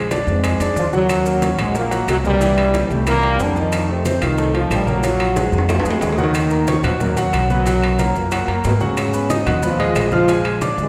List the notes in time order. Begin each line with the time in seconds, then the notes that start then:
Already playing: A#1
0.11 D4 D5, high bongo, high conga, high timbale, maracas
0.27 F2 G#2 G#3, high bongo, high conga, maracas
0.43 G#3 G#4, high bongo, high conga, high timbale, claves, maracas
0.60 F2 D4 D5, high bongo, high conga, high timbale, maracas
0.76 D#2 F3 F4, high bongo, low bongo, high conga, maracas
0.93 F#2 F#3 F#4, high bongo, high conga, maracas
1.09 high bongo, high conga, high timbale, claves, maracas
1.26 A#3 A#4, high bongo, maracas
1.42 C#4 C#5, high bongo, high conga, high timbale, maracas
1.58 A#1 G#2 G#3 F#4 F#5, high conga, high timbale, claves, maracas
1.75 A#2 A#3 A#4, high bongo, high conga, maracas
1.91 F#3 F#4, high bongo, high conga, high timbale, maracas
2.07 C2 F#2 F#3, high bongo, low bongo, high timbale, low timbale, claves, maracas
2.24 G2 G3 A#3 A#4, high bongo, high conga, maracas
2.40 E3 E4, high bongo, high conga, high timbale, maracas
2.58 high conga, high timbale, claves
2.74 G3 G4, high bongo, high conga, high timbale, maracas
2.90 C2 A2 A3, high bongo, high conga, maracas
3.07 A#2 E3 A#3 E4, high bongo, high conga, high timbale, claves, maracas
3.23 G3 G4, high bongo, high conga, high timbale
3.39 F2 D3 D4, high bongo, low bongo, high conga, maracas
3.56 D#3 F3 D#4 F4, high bongo, maracas
3.72 high bongo, high conga, high timbale, claves, maracas
3.89 C3 A3 C4 A4, high bongo, high conga
4.05 C4 C5, high bongo, high conga, high timbale, maracas
4.22 C2 D#3 D#4 F4 F5, high conga, high timbale, claves, maracas
4.38 A3 A4, high bongo, high conga, maracas
4.54 F3 F4, high bongo, high timbale
4.70 A#1 G2 G3, high bongo, low bongo, high conga, high timbale, low timbale, claves, maracas
4.86 F#2 F#3 A#3 A#4, high bongo, high conga, maracas
5.03 F#3 F4, high bongo, high conga, high timbale, maracas
5.20 high conga, high timbale, claves
5.36 G#3 G#4, high bongo, high conga, high timbale, maracas
5.52 F2, high bongo, high conga, maracas
5.58 high timbale
5.69 F3 F4, high bongo, high conga, low timbale, claves, maracas
5.80 high timbale
5.84 F2 G#3 G#4, high bongo, high conga, maracas
5.91 low timbale
6.01 D#2 D3 D4, high bongo, low bongo, high conga, low timbale, maracas
6.13 low timbale
6.18 D#3 F#3 D#4 F#4, high bongo, high conga, maracas
6.24 low timbale
6.34 high bongo, high conga, high timbale, claves, maracas
6.50 A#3 A#4 A#5, high bongo, high conga, maracas
6.67 C#4 C#5 C#6, high bongo, high conga, high timbale, maracas
6.83 D#2 F3 F4 F#4 F#5 F#6, high conga, low conga, high timbale, claves, maracas
7.00 F#2 F#3 A#3 A#4 A#5, high bongo, high conga, low conga, maracas
7.17 F#3 F#4 F#5, high bongo, high conga, high timbale, maracas
7.33 B1, high bongo, low bongo, high conga, high timbale, claves, maracas
7.49 F#2 F#3 B3 B4 B5, high bongo, high conga, maracas
7.66 F#3 F#4 F#5, high bongo, high conga, high timbale, maracas
7.82 high conga, high timbale, claves
7.99 A#3 A#4 A#5, high bongo, high conga, high timbale, maracas
8.15 F#2 A#2 A#3, high bongo, high conga, maracas
8.31 F#3 F#4 F#5, high bongo, high conga, high timbale, claves, maracas
8.48 F#2 A#3 A#4 A#5, high bongo, high conga, high timbale
8.64 G#2 B2 B3, high bongo, low bongo, high conga, low timbale, maracas
8.80 C#3 F#3 C#4 F#4 F#5, high bongo, high conga, maracas
8.97 high bongo, high conga, high timbale, claves, maracas
9.14 B3 B4 B5, high bongo, high conga, maracas
9.30 D#4 D#5 D#6, high bongo, high conga, high timbale, maracas
9.46 D#2 D#3 D#4 F#4 F#5 F#6, high conga, low conga, high timbale, claves, maracas
9.62 F3 B3 F4 B4 B5, high bongo, high conga, low conga, maracas
9.79 G#3 G#4 D#5, high bongo, high conga, high timbale
9.95 A#1, high bongo, low bongo, high conga, high timbale, low timbale, claves, maracas
10.11 F3 F4 F5 F6, high bongo, high conga, maracas
10.28 G#3 G#4 G#5, high bongo, high conga, high timbale, maracas
10.45 high conga, high timbale, claves
10.61 D4 D5 D6, high bongo, high conga, high timbale, maracas
10.78 D2 G#2 G#3, high bongo, high conga, maracas